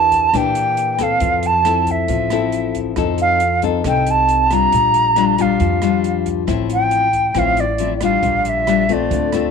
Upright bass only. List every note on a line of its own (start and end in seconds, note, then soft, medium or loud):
0.00 0.30 E2 medium
0.33 1.17 A#2 medium
1.21 2.05 F2 medium
2.08 2.93 A1 medium
2.96 3.80 F2 medium
3.84 4.68 C2 medium
4.72 5.56 A#1 medium
5.60 6.44 F2 medium
6.48 7.32 A1 medium
7.35 8.19 A1 medium
8.22 9.06 A#1 medium
9.11 9.51 D2 medium